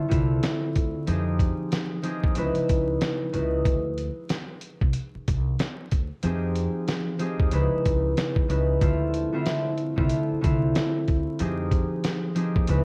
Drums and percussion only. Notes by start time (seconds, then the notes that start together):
0.12 kick, closed hi-hat
0.43 snare, closed hi-hat
0.76 kick, closed hi-hat
1.07 closed hi-hat
1.39 kick, closed hi-hat
1.72 snare, closed hi-hat
2.03 closed hi-hat
2.24 kick
2.35 closed hi-hat
2.55 closed hi-hat
2.69 kick, closed hi-hat
3.01 snare, closed hi-hat
3.34 closed hi-hat
3.65 kick, closed hi-hat
3.98 closed hi-hat
4.30 snare, closed hi-hat
4.61 closed hi-hat
4.82 kick
4.93 closed hi-hat
5.28 kick, closed hi-hat
5.59 snare, closed hi-hat
5.91 kick, closed hi-hat
6.23 closed hi-hat
6.56 closed hi-hat
6.88 snare, closed hi-hat
7.19 closed hi-hat
7.40 kick
7.51 closed hi-hat
7.86 kick, closed hi-hat
8.17 snare, closed hi-hat
8.36 kick
8.50 closed hi-hat
8.81 kick, closed hi-hat
9.14 closed hi-hat
9.46 snare, closed hi-hat
9.78 closed hi-hat
9.98 kick
10.09 closed hi-hat
10.43 kick, closed hi-hat
10.75 snare, closed hi-hat
11.08 kick, closed hi-hat
11.39 closed hi-hat
11.71 kick, closed hi-hat
12.04 snare, closed hi-hat
12.36 closed hi-hat
12.56 kick
12.67 closed hi-hat